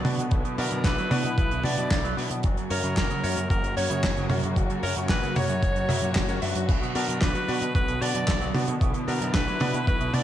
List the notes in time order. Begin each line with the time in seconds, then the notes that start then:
Already playing: D3 F#3 B3 F#4
0.05 B2 D4 F#4 B4 D5, open hi-hat, high tom
0.18 B2, closed hi-hat
0.31 B1 B2 E4, kick, closed hi-hat
0.45 B2, closed hi-hat
0.58 B2 D4 F#4 A#4 B4 D5, open hi-hat
0.71 F#2 B2, closed hi-hat
0.84 B1 D3 B4, kick, snare, clap, closed hi-hat
0.98 F#3, closed hi-hat
1.11 B2 D4 F#4 B4 D5, open hi-hat, high tom
1.24 B2, closed hi-hat
1.38 B1 B2 B4, kick, closed hi-hat
1.51 B2, closed hi-hat
1.64 B2 D4 F#4 B4 D5, open hi-hat, high tom
1.77 F#2 B2, closed hi-hat
1.91 B1 D3, kick, snare, clap, closed hi-hat
2.04 F#3, closed hi-hat
2.17 B2 D4 F#4 B4 D5, open hi-hat
2.31 B2, closed hi-hat
2.43 F#1 F#2 C#3 A#3 F#4, kick, closed hi-hat
2.57 F#2, closed hi-hat
2.70 F#2 C#4 F#4 A#4 C#5, open hi-hat
2.84 F#2 C#3, closed hi-hat
2.97 F#1 A#2 A#4, kick, snare, clap, closed hi-hat
3.10 C#3, closed hi-hat
3.24 F#2 C#4 F#4 A#4 C#5, open hi-hat
3.37 F#2, closed hi-hat
3.50 F#1 F#2 A#4, kick, closed hi-hat
3.63 F#2, closed hi-hat
3.77 F#2 C#4 F#4 A#4 C#5, open hi-hat
3.90 F#2 C#3, closed hi-hat
4.03 F#1 A#2, kick, snare, clap, closed hi-hat
4.16 C#3, closed hi-hat
4.30 F#2 C#4 F#4 A#4 C#5, open hi-hat, high tom
4.43 F#2, closed hi-hat
4.56 F#1 F#2, kick, closed hi-hat
4.70 F#2, closed hi-hat
4.83 F#2 C#4 F#4 A#4 C#5, open hi-hat
4.96 F#2 C#3, closed hi-hat
5.09 F#1 A#2 B4, kick, snare, clap, closed hi-hat
5.23 C#3, closed hi-hat
5.36 F#2 C#4 F#4 A#4 C#5, open hi-hat, high tom
5.49 F#2, closed hi-hat
5.63 F#1 F#2, kick, closed hi-hat
5.76 F#2, closed hi-hat
5.89 F#2 C#3 C#4 F#4 A#4 E5, open hi-hat, high tom
6.02 F#2 A#2, closed hi-hat
6.15 F#1 A#2, kick, snare, clap, closed hi-hat
6.29 F#2 C#4 F#4 A#4 C#5, closed hi-hat
6.42 F#2 D4 F#4 B4 E5, open hi-hat
6.55 F#2, closed hi-hat
6.69 B1 B2 D3 B3, kick, closed hi-hat, crash
6.82 B2, closed hi-hat
6.95 B2 D4 F#4 A#4 B4 D5, open hi-hat
7.09 F#2 B2, closed hi-hat
7.21 B1 D3 B4, kick, snare, clap, closed hi-hat
7.35 F#3, closed hi-hat
7.48 B2 D4 F#4 B4 D5, open hi-hat
7.62 B2, closed hi-hat
7.75 B1 B2 B4, kick, closed hi-hat
7.88 B2, closed hi-hat
8.01 B2 D4 F#4 B4 D5, open hi-hat
8.15 F#2 B2, closed hi-hat
8.27 B1 D3, kick, snare, clap, closed hi-hat
8.41 F#3, closed hi-hat
8.54 B2 D4 F#4 B4 D5, open hi-hat, high tom
8.68 B2, closed hi-hat
8.81 B1 B2 E4, kick, closed hi-hat
8.94 B2, closed hi-hat
9.08 B2 D4 F#4 A#4 B4 D5, open hi-hat
9.21 F#2 B2, closed hi-hat
9.34 B1 D3 B4, kick, snare, clap, closed hi-hat
9.48 F#3, closed hi-hat
9.60 B2 D4 F#4 B4 D5, open hi-hat, high tom
9.74 B2, closed hi-hat
9.87 B1 B2 B4, kick, closed hi-hat
10.01 B2, closed hi-hat
10.14 B2 D4 F#4 B4 D5, open hi-hat, high tom